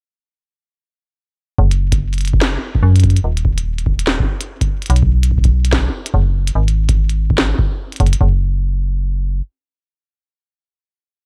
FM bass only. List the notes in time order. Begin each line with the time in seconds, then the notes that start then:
1.58 F#1
2.83 F#2
3.24 D#1
4.90 B1
6.14 F#1
6.55 G#1
8.00 F#1
8.21 F#1